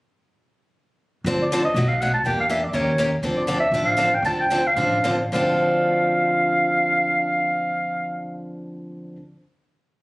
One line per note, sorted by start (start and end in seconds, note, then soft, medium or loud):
1.24 1.64 D2 medium
1.24 1.43 D3 medium
1.24 1.44 F3 medium
1.24 1.44 C4 medium
1.24 1.44 D4 medium
1.24 1.44 A4 medium
1.42 1.64 D5 medium
1.52 1.61 D3 medium
1.52 1.61 F3 medium
1.52 1.61 C4 medium
1.52 1.61 D4 medium
1.52 1.62 A4 medium
1.65 1.90 D#5 medium
1.74 2.14 B1 medium
1.74 1.93 B2 medium
1.74 1.93 F#3 medium
1.74 1.93 A3 medium
1.74 1.94 D#4 medium
1.74 1.94 F#4 medium
1.89 2.02 F5 medium
2.01 2.10 B2 medium
2.01 2.10 F#3 medium
2.01 2.11 A3 medium
2.01 2.11 D#4 medium
2.01 2.11 F#4 medium
2.01 2.13 F#5 medium
2.14 2.24 A5 medium
2.24 2.64 E2 medium
2.24 2.42 E3 medium
2.24 2.43 A#3 medium
2.24 2.43 D4 medium
2.24 2.43 G4 medium
2.24 2.38 G5 medium
2.40 2.49 F5 medium
2.50 2.59 E3 medium
2.50 2.59 A#3 medium
2.50 2.59 D4 medium
2.50 2.59 G4 medium
2.50 2.66 E5 medium
2.64 2.76 D5 medium
2.73 3.13 D#2 medium
2.73 2.91 D#3 medium
2.73 2.91 A#3 soft
2.73 2.91 C#4 medium
2.73 2.92 G4 medium
2.73 2.92 A#4 medium
2.73 3.12 C#5 medium
2.98 3.08 D#3 medium
2.98 3.08 A#3 medium
2.98 3.08 C#4 medium
2.98 3.08 G4 medium
2.98 3.09 A#4 medium
3.23 3.62 D2 medium
3.23 3.41 D3 medium
3.23 3.41 F3 medium
3.23 3.41 C4 medium
3.23 3.41 D4 medium
3.23 3.41 A4 medium
3.37 3.59 D5 medium
3.47 3.57 D3 medium
3.47 3.58 F3 medium
3.47 3.58 C4 medium
3.47 3.58 D4 medium
3.47 3.58 A4 medium
3.60 3.88 E5 medium
3.71 4.13 A1 medium
3.71 3.91 D3 medium
3.71 3.91 F3 medium
3.71 3.91 C4 medium
3.71 3.92 D4 medium
3.71 3.92 A4 medium
3.86 4.16 F5 medium
3.97 4.07 D3 medium
3.97 4.08 F3 medium
3.97 4.08 C4 medium
3.97 4.08 D4 medium
3.97 4.08 A4 medium
4.15 4.25 G5 medium
4.22 4.65 D2 medium
4.22 4.43 D3 soft
4.22 4.43 F3 medium
4.22 4.43 C4 medium
4.22 4.43 D4 medium
4.22 4.43 A4 medium
4.22 4.38 A5 medium
4.41 4.69 G5 medium
4.50 4.61 D3 medium
4.50 4.61 F3 medium
4.50 4.61 C4 medium
4.50 4.61 D4 medium
4.50 4.61 A4 medium
4.67 5.21 F5 medium
4.76 5.21 A1 medium
4.76 4.96 D3 medium
4.76 4.97 F3 medium
4.76 4.97 C4 medium
4.76 4.97 D4 medium
4.76 4.97 A4 medium
5.04 5.15 D3 medium
5.04 5.15 F3 medium
5.04 5.16 C4 medium
5.04 5.16 D4 medium
5.04 5.16 A4 medium
5.32 9.12 D2 medium
5.32 9.15 D3 medium
5.32 9.16 F3 medium
5.32 9.17 C4 medium
5.32 9.17 D4 medium
5.32 9.17 A4 medium
5.32 8.42 F5 medium